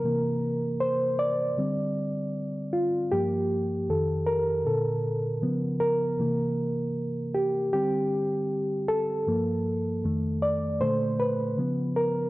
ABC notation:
X:1
M:4/4
L:1/8
Q:"Swing 16ths" 1/4=78
K:Cmix
V:1 name="Reed electric piano"
B2 c d4 F | G3 B4 B- | B3 G G3 A- | A3 d c =B2 _B |]
V:2 name="Reed electric piano" clef=bass
[C,E,B,]4 [D,G,C] z3 | [G,,F,B,]2 [F,,_E,A]2 [B,,D,A]2 [^C,^E,=B,]2 | [C,E,B,]3 z [D,G,C]3 z | [G,,F,B,]2 [F,,_E,A,]2 [B,,D,A,]2 [^C,^E,=B,] z |]